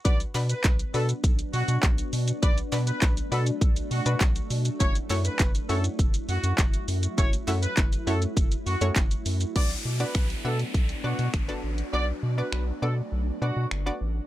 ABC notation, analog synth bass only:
X:1
M:4/4
L:1/16
Q:1/4=101
K:Bm
V:1 name="Analog synth bass" clef=bass
B,,,2 B,,2 B,,,2 B,,2 B,,,2 B,, B,, B,,,2 B,,2 | B,,,2 B,,2 B,,,2 B,,2 B,,,2 B,, B,, B,,,2 B,,2 | F,,,2 F,,2 F,,,2 F,,2 F,,,2 F,, F,, F,,,2 F,,2 | F,,,2 F,,2 F,,,2 F,,2 F,,,2 F,, F,, F,,,2 F,,2 |
B,,,2 B,,2 B,,,2 B,,2 B,,,2 B,, B,, G,,,2 A,,,2 | B,,,2 B,,2 B,,,2 B,,2 B,,,2 B,, B,, G,,,2 A,,,2 |]